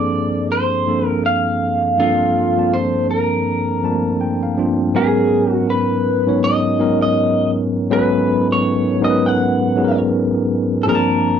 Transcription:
0.00 0.87 G2 loud
0.00 0.87 F3 medium
0.00 0.87 A#3 medium
0.00 0.88 C4 medium
0.00 0.89 D4 medium
0.00 4.96 G#4 medium
0.00 0.89 A4 medium
0.00 0.47 D5 medium
0.52 1.08 C5 medium
0.87 1.77 G2 medium
0.87 1.77 F3 medium
0.87 1.78 A#3 medium
0.87 1.78 C4 medium
0.87 1.78 D4 medium
0.87 1.78 A4 medium
1.08 1.25 A#4 medium
1.26 2.01 F5 loud
1.98 2.43 G2 medium
1.98 2.43 F3 medium
1.98 2.44 A#3 medium
1.98 2.44 C4 medium
1.98 2.44 D4 medium
1.98 2.75 F4 medium
1.98 2.44 A4 loud
2.56 3.58 G2 medium
2.56 3.58 F3 medium
2.56 3.58 A#3 medium
2.56 3.59 C4 medium
2.56 3.59 D4 medium
2.56 3.59 A5 medium
2.74 3.10 C5 medium
3.11 4.54 A#4 medium
3.82 4.44 G2 medium
3.82 4.45 F3 medium
3.82 3.91 A3 soft
3.82 4.45 C4 medium
3.82 4.45 D4 medium
3.82 4.46 A5 medium
3.90 4.48 A#3 medium
4.21 4.41 G5 medium
4.43 4.91 F5 medium
4.57 4.88 G2 medium
4.57 4.88 F3 medium
4.57 4.88 A#3 medium
4.57 4.89 C4 medium
4.57 4.89 D4 medium
4.57 4.89 F4 medium
4.94 5.98 G#2 loud
4.94 5.99 F#3 medium
4.94 5.99 B3 loud
4.94 5.99 C#4 loud
4.94 5.99 D#4 medium
4.94 5.51 G#4 medium
4.94 5.99 A#4 loud
5.51 5.70 F#4 medium
5.70 6.39 B4 medium
6.26 6.70 G#2 medium
6.26 6.70 F#3 medium
6.26 6.70 B3 medium
6.26 6.70 C#4 medium
6.26 6.70 D#4 medium
6.26 6.71 C#5 medium
6.44 7.01 D#5 loud
6.79 7.70 G#2 medium
6.79 7.70 F#3 medium
6.79 7.70 B3 medium
6.79 7.70 C#4 medium
6.79 7.71 D#4 medium
6.79 7.71 A#4 medium
7.02 7.50 D#5 medium
7.90 8.81 G#2 loud
7.90 8.81 F#3 loud
7.90 8.81 B3 medium
7.90 8.82 C#4 loud
7.90 8.82 D#4 medium
7.90 7.99 A4 medium
7.90 8.47 B4 medium
7.99 8.85 B4 loud
8.52 9.04 C#5 medium
9.01 9.63 G#2 medium
9.01 9.63 F#3 medium
9.01 9.63 B3 medium
9.01 9.64 C#4 medium
9.01 9.64 D#4 medium
9.01 9.10 A#4 medium
9.01 9.26 D#5 loud
9.10 9.67 B4 medium
9.26 9.99 F#5 loud
9.75 10.66 G#2 medium
9.75 10.66 F#3 medium
9.75 10.67 B3 medium
9.75 10.67 C#4 medium
9.75 10.67 D#4 medium
9.75 9.84 G#4 medium
9.84 10.71 A#4 medium
10.83 11.40 G2 loud
10.83 11.40 F3 loud
10.83 11.40 A#3 medium
10.83 10.88 A4 medium
10.88 11.40 C4 medium
10.88 11.40 D4 loud
10.88 10.95 G#4 loud
10.88 11.40 A#4 loud
10.95 11.40 A5 loud

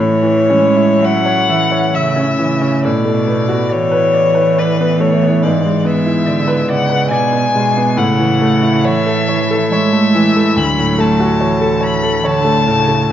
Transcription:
0.00 2.81 A2 medium
0.00 0.51 E3 medium
0.00 1.05 C#5 loud
0.23 0.66 E3 medium
0.50 1.01 G#3 medium
0.50 0.92 C#4 medium
0.76 1.17 E4 medium
0.99 1.51 F#3 medium
0.99 1.41 E5 medium
1.04 1.96 F#5 loud
1.25 1.63 C#5 medium
1.49 1.95 E3 medium
1.49 1.86 E5 medium
1.71 2.08 C#5 medium
1.94 2.39 C#3 medium
1.94 2.31 E5 medium
1.94 2.83 E5 loud
2.16 2.53 C#4 medium
2.38 2.89 C#3 medium
2.38 2.75 E3 medium
2.61 2.84 C#4 medium
2.84 5.40 A2 medium
2.84 3.75 B2 medium
2.84 3.73 D5 medium
3.05 3.41 A3 medium
3.28 3.63 B3 medium
3.49 3.84 F#4 medium
3.69 4.60 C#5 loud
3.69 4.05 D5 medium
3.74 6.29 E3 medium
3.92 4.27 B4 medium
4.13 4.49 D5 medium
4.35 4.70 B4 medium
4.58 5.01 B4 loud
4.58 4.93 D5 medium
4.80 5.14 B3 medium
5.00 5.35 A3 medium
5.00 5.44 C#5 medium
5.23 5.44 B3 medium
5.43 7.93 G#2 medium
5.43 5.87 D5 medium
5.66 5.99 G#3 medium
5.85 6.19 B3 medium
5.85 6.69 E5 loud
6.06 6.39 E4 medium
6.26 6.68 D3 medium
6.26 6.60 D5 medium
6.48 6.81 B4 medium
6.68 7.11 C#3 medium
6.68 7.03 D5 medium
6.68 7.10 F#5 loud
6.89 7.24 B4 medium
7.09 7.53 B2 medium
7.09 7.45 D5 medium
7.09 7.99 G#5 loud
7.32 7.67 B3 medium
7.54 7.99 B2 medium
7.54 7.89 G#3 medium
7.77 7.98 B3 medium
7.97 10.53 A2 medium
7.97 8.85 C#3 medium
7.97 8.85 F#5 loud
8.19 8.54 E3 medium
8.41 8.76 A3 medium
8.62 8.97 E4 medium
8.83 9.72 E3 medium
8.83 9.19 C#5 medium
8.83 9.70 E5 loud
9.06 9.41 A4 medium
9.28 9.62 C#5 medium
9.51 9.84 A4 medium
9.70 10.59 G#3 medium
9.70 10.06 C#5 medium
9.70 10.59 E5 loud
9.93 10.27 A3 medium
10.15 10.49 E3 medium
10.36 10.57 A3 medium
10.56 13.05 D2 medium
10.56 11.42 F#3 medium
10.56 11.01 B5 loud
10.78 11.11 A2 medium
10.98 11.31 A3 medium
10.98 11.84 A5 loud
11.20 11.53 F#4 medium
11.40 12.24 E3 medium
11.40 11.73 C#5 medium
11.61 11.94 A4 medium
11.81 12.15 C#5 medium
11.81 12.27 B5 loud
12.03 12.36 A4 medium
12.24 12.69 D3 medium
12.24 12.58 C#5 medium
12.24 13.12 A5 loud
12.44 12.79 A3 medium
12.67 13.01 A2 medium
12.67 13.10 C#3 medium
12.88 13.10 A3 medium

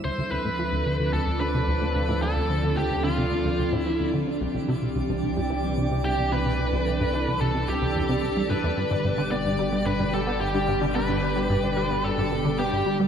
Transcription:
0.04 4.38 D2 medium
0.04 0.11 D2 medium
0.04 4.37 F3 medium
0.04 8.73 C4 medium
0.04 8.73 D4 medium
0.04 13.08 D4 medium
0.04 4.37 A4 medium
0.04 0.31 C5 loud
0.04 13.08 D5 medium
0.18 0.22 D2 loud
0.31 0.38 D2 medium
0.31 1.13 B4 medium
0.45 0.49 A2 medium
0.59 0.63 F3 medium
0.72 0.83 D2 medium
0.86 0.97 D3 medium
1.00 1.10 D3 medium
1.13 1.20 D2 medium
1.13 1.40 A4 loud
1.27 1.31 D2 medium
1.40 1.48 D3 medium
1.40 2.22 B4 loud
1.54 1.61 C3 medium
1.68 1.75 D2 medium
1.82 1.86 D2 medium
1.95 2.02 D2 medium
2.09 2.13 A2 loud
2.22 2.27 F3 medium
2.22 2.79 A4 medium
2.36 2.46 D2 medium
2.50 2.60 D3 medium
2.63 2.74 D3 medium
2.77 2.84 D2 loud
2.77 3.04 G4 medium
2.91 2.95 D2 medium
3.04 3.11 D3 loud
3.04 3.74 F4 medium
3.18 3.25 C3 medium
3.31 3.38 D2 medium
3.45 3.49 D2 loud
3.59 3.66 D2 medium
3.72 3.77 A2 loud
3.72 4.09 E4 medium
3.86 3.90 F3 medium
4.00 4.10 D2 medium
4.13 4.24 D3 medium
4.27 4.38 D3 medium
4.41 4.48 C2 loud
4.41 8.75 C2 medium
4.41 8.73 E3 medium
4.41 6.57 G4 medium
4.54 4.59 C2 medium
4.68 4.75 C3 loud
4.82 4.89 B2 medium
4.96 5.02 C2 medium
5.09 5.13 C2 medium
5.23 5.30 C2 medium
5.37 5.41 G2 medium
5.50 5.54 E3 medium
5.64 5.74 C2 medium
5.77 5.88 C3 medium
5.91 6.01 C3 medium
6.05 6.11 C2 loud
6.05 6.33 G4 medium
6.18 6.22 C2 medium
6.32 6.39 C3 loud
6.32 7.41 B4 medium
6.45 6.52 B2 medium
6.59 6.66 C2 medium
6.59 8.75 A4 medium
6.73 6.77 C2 loud
6.87 6.93 C2 medium
7.00 7.04 G2 medium
7.14 7.18 E3 medium
7.27 7.38 C2 medium
7.41 7.51 C3 medium
7.41 7.69 A4 medium
7.54 7.65 C3 medium
7.68 7.75 C2 medium
7.68 8.52 G4 medium
7.82 7.86 C2 medium
7.96 8.02 E2 medium
8.09 8.16 C3 medium
8.23 8.30 C2 medium
8.36 8.43 G3 medium
8.50 8.54 G2 loud
8.50 9.31 B4 medium
8.64 8.71 E2 loud
8.77 13.08 G1 medium
8.77 8.84 G2 medium
8.77 13.08 B2 medium
8.77 13.08 D3 medium
8.77 13.08 G3 medium
8.77 13.08 G4 medium
8.91 8.95 G2 medium
9.04 9.11 G2 medium
9.18 9.22 D3 loud
9.31 9.36 B3 medium
9.31 9.86 D5 loud
9.45 9.56 G2 medium
9.59 9.69 G3 medium
9.72 9.83 G3 medium
9.86 9.93 G2 medium
9.86 10.12 B4 medium
10.00 10.04 G2 medium
10.13 10.20 G3 medium
10.13 10.40 A4 medium
10.27 10.31 B3 medium
10.41 10.48 G2 medium
10.41 10.79 G4 medium
10.54 10.59 G2 loud
10.68 10.75 G2 medium
10.82 10.86 D3 loud
10.95 10.99 B3 medium
10.95 12.08 B4 medium
11.09 11.19 G2 medium
11.22 11.33 G3 medium
11.36 11.46 G3 medium
11.50 11.57 G2 loud
11.63 11.68 G2 medium
11.77 11.84 G3 loud
11.91 11.95 B3 medium
12.04 12.11 G2 medium
12.04 12.58 A4 medium
12.18 12.22 G2 loud
12.31 12.38 G2 medium
12.45 12.49 D3 loud
12.59 12.63 B3 medium
12.59 12.97 G4 medium
12.73 12.83 G2 medium
12.86 12.97 G3 medium
13.00 13.08 G3 medium

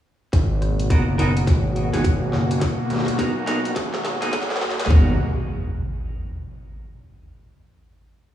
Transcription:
0.33 0.88 G#1 medium
0.33 4.86 B2 medium
0.33 4.86 A#3 medium
0.33 4.86 F#4 medium
0.33 kick medium
0.33 snare soft
0.33 closed hi-hat medium
0.33 riser medium
0.62 cross-stick soft
0.62 closed hi-hat soft
0.80 closed hi-hat medium
0.90 1.17 F#1 loud
0.90 1.02 B3 medium
0.90 1.02 D#4 medium
0.90 1.02 F#4 medium
0.90 1.02 A#4 medium
0.90 kick medium
0.90 closed hi-hat medium
1.18 1.46 F#1 loud
1.18 1.30 B3 medium
1.18 1.31 D#4 medium
1.18 1.30 F#4 medium
1.18 1.30 A#4 loud
1.18 snare medium
1.18 closed hi-hat medium
1.37 closed hi-hat medium
1.47 1.91 G#1 loud
1.47 kick loud
1.47 snare medium
1.47 closed hi-hat medium
1.76 closed hi-hat soft
1.93 2.32 G#1 medium
1.93 2.06 B3 medium
1.93 2.06 D#4 medium
1.93 2.06 F#4 medium
1.93 2.06 G#4 medium
1.93 snare medium
1.93 closed hi-hat medium
2.04 kick medium
2.04 closed hi-hat medium
2.33 2.60 F#1 medium
2.33 cross-stick soft
2.33 snare medium
2.51 closed hi-hat medium
2.61 kick loud
2.61 snare medium
2.61 closed hi-hat medium
2.90 3.05 G#1 loud
2.90 snare soft
2.90 closed hi-hat soft
2.93 snare soft
2.96 snare soft
2.99 snare medium
3.05 3.67 B1 loud
3.05 snare medium
3.05 closed hi-hat medium
3.19 3.31 B3 medium
3.19 3.30 D#4 medium
3.19 3.30 F#4 medium
3.19 3.30 A#4 medium
3.19 kick loud
3.19 snare medium
3.19 closed hi-hat medium
3.47 3.59 B3 medium
3.47 3.59 D#4 medium
3.47 3.59 F#4 medium
3.47 3.59 A#4 medium
3.47 snare medium
3.47 closed hi-hat medium
3.65 3.91 A#1 loud
3.65 closed hi-hat medium
3.76 kick loud
3.76 snare medium
3.76 closed hi-hat medium
3.94 4.19 G#1 loud
3.94 snare medium
4.05 snare loud
4.05 closed hi-hat soft
4.22 4.60 G#1 medium
4.22 4.34 B3 medium
4.22 4.34 D#4 medium
4.22 4.34 F#4 medium
4.22 4.34 G#4 medium
4.22 snare medium
4.22 closed hi-hat medium
4.33 kick loud
4.33 snare loud
4.33 closed hi-hat medium
4.42 snare medium
4.50 snare loud
4.56 snare medium
4.61 4.89 D#2 loud
4.61 snare loud
4.71 snare medium
4.80 snare loud
4.80 closed hi-hat medium
4.85 snare loud
4.89 5.17 G#1 medium
4.89 5.16 B2 medium
4.89 5.16 A#3 medium
4.89 5.13 B3 medium
4.89 5.13 D#4 medium
4.89 5.16 F#4 medium
4.89 5.13 F#4 medium
4.89 5.13 A#4 medium
4.89 kick loud
4.89 snare loud
4.89 clap medium
4.89 impact medium

